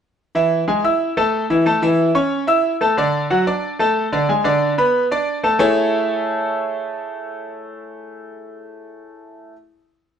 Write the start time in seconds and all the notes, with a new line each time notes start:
0.35 E3 E4 E5
0.68 G#3 G#4 G#5
0.84 E4 E5 E6
1.17 A3 A4 A5
1.50 E3 E4 E5
1.66 A3 A4 A5
1.82 E3 E4 E5
2.15 C#4 C#5 C#6
2.47 E4 E5 E6
2.81 A3 A4 A5
2.97 D3 D4 D5
3.30 F#3 F#4 F#5
3.47 D4 D5 D6
3.79 A3 A4 A5
4.12 D3 D4 D5
4.29 G#3 G#4 G#5
4.44 D3 D4 D5
4.78 B3 B4 B5
5.11 D4 D5 D6
5.43 A3 A4 A5
5.59 A3 E4 G#4 A4 C#5 E5